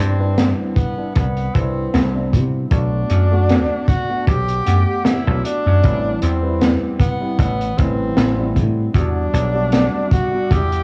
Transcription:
Already playing: G3 B3 D4 E4
0.00 G2 C4
0.19 G3 D4 E4 B4
0.38 snare, closed hi-hat
0.76 B3, kick, closed hi-hat
0.97 G3 B3 D4 E4
1.15 C2 B3, kick, closed hi-hat
1.37 closed hi-hat
1.54 C2 G3 C4 D4 E4 B4, kick, closed hi-hat
1.94 C2, snare, closed hi-hat
2.14 G3 B3 D4 E4
2.33 C3, kick, closed hi-hat
2.71 B1 A3 B3 D4 F#4, kick, closed hi-hat
3.10 F#2, closed hi-hat
3.31 A3 B3 D4 F#4
3.49 snare, closed hi-hat
3.88 F#4, kick, closed hi-hat
4.09 A3 B3 D4 F#4
4.27 B1 G4, kick, closed hi-hat
4.48 closed hi-hat
4.65 F#2 A3 B3 D4 F#5, closed hi-hat
5.05 E4, snare, closed hi-hat
5.26 B1 A3 B3 D4 F#4
5.44 D4, closed hi-hat
5.66 F#2
5.82 A1 G3 B3 C4 E4, kick, closed hi-hat
6.22 E2 C4, closed hi-hat
6.43 G3 C4 E4 B4
6.61 snare, closed hi-hat
7.00 B3, kick, closed hi-hat
7.20 G3 B3 C4 E4
7.39 A1 B3, kick, closed hi-hat
7.61 closed hi-hat
7.77 A1 G3 C4 E4 B4, kick, closed hi-hat
8.17 A1, snare, closed hi-hat
8.37 G3 B3 C4 E4
8.56 A2, kick, closed hi-hat
8.94 E2 G3 B3 D4 F#4 E5 B5 D6, kick, closed hi-hat
9.34 B1, closed hi-hat
9.54 G3 B3 D4 F#4
9.72 snare, closed hi-hat
10.11 F#4, kick, closed hi-hat
10.31 G3 B3 D4 F#4
10.51 E2 G4, kick, closed hi-hat
10.72 closed hi-hat

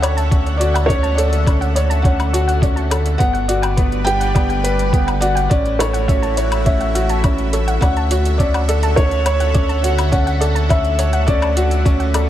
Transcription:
Already playing: D2 D3 C#4 F#4 A4 E5 F#5
0.02 C#5 D5, closed hi-hat, low woodblock
0.17 A5, closed hi-hat
0.31 C#4 C#5, kick, closed hi-hat
0.47 closed hi-hat
0.57 F#4 C#5 D5, closed hi-hat
0.74 F#5, closed hi-hat, low woodblock
0.86 C#4 C#5 D5, kick
0.90 closed hi-hat
1.03 A5, closed hi-hat
1.15 A4 C#5 D5, closed hi-hat
1.33 closed hi-hat
1.46 C#4 C#5, kick, closed hi-hat, low woodblock
1.61 F#5, closed hi-hat
1.75 C#5 D5, closed hi-hat
1.90 A5, closed hi-hat
2.02 C#4 C#5 F#5, kick, closed hi-hat
2.20 closed hi-hat, low woodblock
2.33 F#4 C#5, closed hi-hat
2.48 F#5, closed hi-hat
2.62 C#4 D5, kick, closed hi-hat
2.76 A5, closed hi-hat
2.91 A4 C#5, closed hi-hat, low woodblock
3.06 closed hi-hat
3.18 G1 G3 B3 B4 D5 F#5, kick, closed hi-hat
3.33 F#5, closed hi-hat
3.48 F#4 D5, closed hi-hat
3.62 G5, closed hi-hat, low woodblock
3.77 B3 B4, kick, closed hi-hat
3.92 closed hi-hat
4.05 G4 B4 G5, closed hi-hat
4.20 F#5, closed hi-hat
4.35 B3 D5, kick, closed hi-hat, low woodblock
4.49 G5, closed hi-hat
4.64 B4, closed hi-hat
4.79 closed hi-hat
4.93 B3 B4, kick, closed hi-hat
5.07 F#5, closed hi-hat, low woodblock
5.21 F#4 D5 F#5, closed hi-hat
5.35 G5, closed hi-hat
5.50 A1 A3 C#4 E4 F#4 C#5 D5 E5, kick, closed hi-hat
5.66 closed hi-hat
5.79 A4 C#5, closed hi-hat, low woodblock
5.93 F#5, closed hi-hat
6.08 C#4 E5, kick, closed hi-hat
6.22 A5, closed hi-hat
6.37 C#5, closed hi-hat
6.52 closed hi-hat, low woodblock
6.65 C#4 C#5 E5, kick, closed hi-hat
6.81 F#5, closed hi-hat
6.95 F#4 E5, closed hi-hat
7.09 A5, closed hi-hat
7.24 C#4 C#5, kick, closed hi-hat, low woodblock
7.38 closed hi-hat
7.53 A4 C#5, closed hi-hat
7.68 F#5, closed hi-hat
7.81 D2 D3 C#4 A4 D5 F#5, kick, closed hi-hat, low woodblock
7.97 A5, closed hi-hat
8.11 F#4 C#5, closed hi-hat
8.25 closed hi-hat
8.38 C#4 C#5 D5, kick, closed hi-hat
8.54 F#5, closed hi-hat, low woodblock
8.69 A4 D5, closed hi-hat
8.83 A5, closed hi-hat
8.96 C#4 C#5, kick, closed hi-hat
9.11 closed hi-hat
9.26 C#5, closed hi-hat, low woodblock
9.40 F#5, closed hi-hat
9.54 C#4 D5, kick, closed hi-hat
9.69 A5, closed hi-hat
9.84 F#4 C#5, closed hi-hat
9.98 closed hi-hat, low woodblock
10.12 C#4 C#5 F#5, kick, closed hi-hat
10.27 F#5, closed hi-hat
10.41 A4 D5, closed hi-hat
10.55 A5, closed hi-hat
10.69 C#4 C#5 E5, kick, closed hi-hat, low woodblock
10.85 closed hi-hat
10.99 C#5, closed hi-hat
11.13 F#5, closed hi-hat
11.27 C#4 D5, kick, closed hi-hat
11.42 A5, closed hi-hat, low woodblock
11.57 F#4 C#5, closed hi-hat
11.71 closed hi-hat
11.85 C#4 C#5, kick, closed hi-hat
12.00 F#5, closed hi-hat
12.14 A4 D5, closed hi-hat, low woodblock

